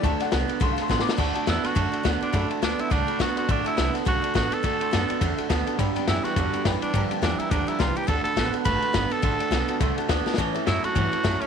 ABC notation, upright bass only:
X:1
M:4/4
L:1/8
Q:"Swing" 1/4=209
K:Dmix
V:1 name="Upright bass" clef=bass
D,, z C,, z B,,, z A,,, z | D,, z E,, z F,, z D,, z | F,, z D,, z C,, z B,,, z | A,,, z C,, z B,,, z A,,, z |
z2 F,, z E,, z D,, z | G,, z F,, z E,, z F,, z | G,, z E,, z D,, z C,, z | D,, z A,,, z F,,, z G,,, z |
A,,, z B,,, z C,, z D,, z | E,, z F,, z G,, z F,, z |]